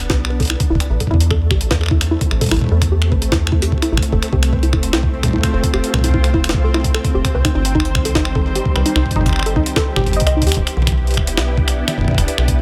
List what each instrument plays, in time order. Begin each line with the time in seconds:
Already playing: fm bass E1, string machine B3 D4
0.10 fm bass B1, synth arpeggio sound G4, kick, snare
0.25 finger snap
0.30 synth arpeggio sound B4
0.40 synth arpeggio sound A4, kick, closed hi-hat
0.42 closed hi-hat
0.45 closed hi-hat
0.47 synth arpeggio sound E4, finger snap, closed hi-hat
0.60 kick, closed hi-hat
0.70 fm bass E1, synth arpeggio sound E4
0.75 kick
0.80 finger snap, closed hi-hat
0.90 fm bass A1
0.97 string machine A3, synth arpeggio sound A4, kick, closed hi-hat
1.07 fm bass E2, synth arpeggio sound E4, kick
1.14 kick
1.20 closed hi-hat
1.31 synth arpeggio sound A4, finger snap, kick
1.47 fm bass A1, string machine C4, finger snap, kick
1.51 synth arpeggio sound G4
1.61 closed hi-hat
1.71 fm bass E2, synth arpeggio sound B4, kick, snare
1.81 synth arpeggio sound A4, finger snap
1.83 finger snap
1.86 finger snap
1.88 synth arpeggio sound E4, finger snap, kick
2.01 finger snap, closed hi-hat
2.11 synth arpeggio sound E4
2.21 kick, closed hi-hat
2.31 fm bass A1, finger snap
2.41 synth arpeggio sound A4, kick, closed hi-hat
2.44 kick, closed hi-hat
2.46 kick, closed hi-hat
2.49 kick, closed hi-hat
2.51 fm bass A1, synth arpeggio sound E4, finger snap, kick, closed hi-hat
2.54 kick, closed hi-hat
2.56 kick, closed hi-hat
2.59 kick, closed hi-hat
2.61 kick
2.64 kick
2.66 kick
2.69 fm bass E2, synth arpeggio sound A4, kick
2.82 finger snap, kick, closed hi-hat
2.92 synth arpeggio sound G4
3.02 finger snap
3.12 fm bass A1, synth arpeggio sound B4, kick
3.22 synth arpeggio sound A4, closed hi-hat
3.32 fm bass E2, synth arpeggio sound E4, finger snap, kick, snare
3.47 finger snap
3.52 synth arpeggio sound E4, kick
3.62 synth arpeggio sound G4, closed hi-hat
3.72 kick
3.82 synth arpeggio sound E4, finger snap, closed hi-hat
3.92 fm bass A1, synth arpeggio sound E4
3.97 finger snap, kick
4.02 closed hi-hat
4.13 fm bass F1, synth texture C4 C5, synth arpeggio sound A4, kick
4.23 finger snap, closed hi-hat
4.33 fm bass C2, synth arpeggio sound G4, kick
4.43 finger snap, closed hi-hat
4.53 synth arpeggio sound B4, kick
4.63 synth arpeggio sound E4, closed hi-hat
4.73 fm bass F1, synth arpeggio sound E4, finger snap, kick
4.83 closed hi-hat
4.91 fm bass C2, synth arpeggio sound E4, string machine F4, finger snap, snare
5.03 kick
5.23 synth arpeggio sound A4, finger snap, kick, closed hi-hat
5.26 string machine C5, kick
5.28 kick
5.31 kick
5.33 synth arpeggio sound E4, kick
5.36 kick
5.38 kick
5.41 kick
5.43 finger snap, kick, closed hi-hat
5.53 fm bass F1, synth arpeggio sound A4
5.64 kick, closed hi-hat
5.74 fm bass F1, synth arpeggio sound G4, finger snap
5.84 closed hi-hat
5.94 fm bass C2, synth arpeggio sound B4, finger snap, kick
5.96 kick
5.99 kick
6.01 kick
6.04 synth arpeggio sound E4, kick, closed hi-hat
6.06 kick
6.09 kick
6.11 kick
6.14 synth arpeggio sound E4, kick
6.24 finger snap, closed hi-hat
6.34 fm bass F1, synth arpeggio sound E4, kick
6.44 finger snap, closed hi-hat
6.49 snare
6.54 fm bass C2, kick
6.64 synth arpeggio sound A4
6.74 synth arpeggio sound E4, finger snap
6.84 kick, closed hi-hat
6.94 synth arpeggio sound A4, finger snap
7.04 kick, closed hi-hat
7.14 fm bass F1, synth arpeggio sound G4
7.25 finger snap, kick, closed hi-hat
7.35 fm bass C2, string machine D#3, synth arpeggio sound B4
7.45 synth arpeggio sound D#4, finger snap, kick, closed hi-hat
7.55 fm bass G1, synth arpeggio sound D#4, string machine G4
7.65 string machine G3, closed hi-hat
7.75 synth arpeggio sound D#4, kick
7.80 finger snap
7.85 closed hi-hat
7.95 fm bass C2, finger snap, kick
8.05 synth arpeggio sound A4, closed hi-hat
8.15 fm bass G1, synth arpeggio sound D#4, kick, snare
8.25 finger snap
8.35 synth arpeggio sound A4, kick
8.55 synth arpeggio sound G4, closed hi-hat
8.66 kick
8.76 fm bass C2, synth arpeggio sound B4, finger snap
8.86 synth arpeggio sound D#4, closed hi-hat
8.96 fm bass C2, synth arpeggio sound D#4, finger snap
9.06 kick
9.11 kick, closed hi-hat
9.16 fm bass G1, synth arpeggio sound D#4, kick
9.21 kick
9.26 finger snap, kick, closed hi-hat
9.29 finger snap
9.33 finger snap
9.36 finger snap
9.39 finger snap
9.43 synth arpeggio sound A4, finger snap, closed hi-hat
9.56 fm bass C2, synth arpeggio sound D#4, kick
9.66 closed hi-hat
9.76 synth arpeggio sound A4, finger snap, kick, snare
9.96 fm bass G1, synth arpeggio sound G4, finger snap, kick
9.99 kick
10.01 kick
10.04 kick
10.06 kick, closed hi-hat
10.09 kick
10.11 kick, closed hi-hat
10.14 synth arpeggio sound D#5, kick
10.20 kick, closed hi-hat
10.27 fm bass C2, synth arpeggio sound D#5, finger snap, closed hi-hat
10.37 synth arpeggio sound D#4
10.42 kick, closed hi-hat
10.47 fm bass D#2, synth arpeggio sound G4, closed hi-hat
10.48 finger snap, closed hi-hat
10.52 closed hi-hat
10.54 fm bass E1, string machine E4, kick, closed hi-hat
10.63 string machine B3, finger snap, closed hi-hat
10.77 fm bass B1, mid tom
10.82 mid tom
10.87 finger snap, kick, closed hi-hat, mid tom
10.92 string machine D4, mid tom
11.07 closed hi-hat
11.11 closed hi-hat
11.14 fm bass E1, finger snap, kick, closed hi-hat
11.27 closed hi-hat
11.37 fm bass B1, finger snap, snare
11.58 kick
11.68 finger snap, closed hi-hat
11.76 string machine B4
11.88 finger snap, closed hi-hat, mid tom
11.98 fm bass E1, kick
12.01 kick
12.04 kick
12.08 kick, mid tom
12.11 kick
12.15 fm bass E1, kick
12.18 finger snap, kick, closed hi-hat
12.28 closed hi-hat
12.38 fm bass B1, finger snap
12.48 kick, closed hi-hat